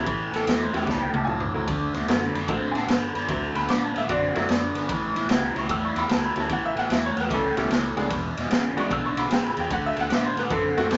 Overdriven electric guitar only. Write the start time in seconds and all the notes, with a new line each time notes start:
0.06 A2 E3
0.33 A2 E3
0.46 A2 F#3
0.73 A2 F#3
0.87 A2 G3
1.14 A2 G3
1.28 A2 F#3
1.54 A2 F#3
1.69 D3 A3
1.95 D3 A3
2.08 D3 B3
2.34 D3 B3
2.48 D3 C4
2.75 D3 C4
2.88 D3 B3
3.15 D3 B3
3.28 D3 A3
3.55 D3 A3
3.68 D3 B3
3.95 D3 B3
4.09 D3 C4
4.35 D3 C4
4.49 D3 B3
4.75 D3 B3
4.90 A2 E3
5.16 A2 E3
5.29 A2 F#3
5.55 A2 F#3
5.69 A2 G3
5.96 A2 G3
6.09 A2 F#3
6.36 A2 F#3
6.49 A2 E3
6.76 A2 E3
6.90 A2 F#3
7.17 A2 F#3
7.30 A2 G3
7.56 A2 G3
7.70 A2 F#3
7.96 A2 F#3
8.10 E2 B2
8.37 E2 B2
8.50 E2 C#3
8.76 E2 C#3
8.89 E2 D3
9.16 E2 D3
9.30 E2 C#3
9.56 E2 C#3
9.70 D3 A3
9.97 D3 A3
10.10 D3 B3
10.37 D3 B3
10.51 D3 C4
10.77 D3 C4
10.90 D3 B3